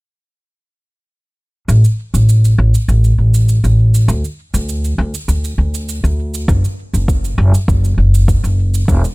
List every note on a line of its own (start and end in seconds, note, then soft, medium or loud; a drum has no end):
1.68 1.81 A1 medium
1.68 cabasa soft
1.84 cabasa soft
2.14 2.54 A1 medium
2.14 cabasa medium
2.29 cabasa soft
2.45 cabasa soft
2.58 2.71 A1 medium
2.75 cabasa medium
2.88 3.13 A1 medium
2.88 cabasa soft
3.04 cabasa soft
3.18 3.59 A1 medium
3.34 cabasa medium
3.49 cabasa medium
3.64 4.04 A1 medium
3.64 cabasa soft
3.94 cabasa medium
4.08 4.21 D2 medium
4.08 cabasa soft
4.24 cabasa soft
4.54 4.94 D2 medium
4.54 cabasa medium
4.69 cabasa soft
4.84 cabasa soft
4.98 5.11 D2 medium
5.14 cabasa medium
5.28 5.53 D2 medium
5.28 cabasa medium
5.44 cabasa soft
5.58 5.99 D2 medium
5.74 cabasa medium
5.89 cabasa medium
6.04 6.44 D2 medium
6.04 cabasa soft
6.34 cabasa medium
6.48 6.61 F#1 medium
6.48 kick medium
6.48 cabasa medium
6.64 cabasa soft
6.94 7.34 F#1 medium
6.94 cabasa medium
7.08 kick medium
7.08 cabasa medium
7.25 cabasa soft
7.38 7.51 F#1 medium
7.54 cabasa medium
7.68 7.93 F#1 medium
7.68 kick loud
7.68 cabasa medium
7.84 cabasa soft
7.98 8.39 F#1 medium
8.15 cabasa medium
8.28 kick loud
8.28 cabasa medium
8.44 8.84 F#1 medium
8.44 cabasa soft
8.74 cabasa medium
8.88 9.01 E1 medium
8.88 kick medium
8.88 cabasa medium
9.04 cabasa soft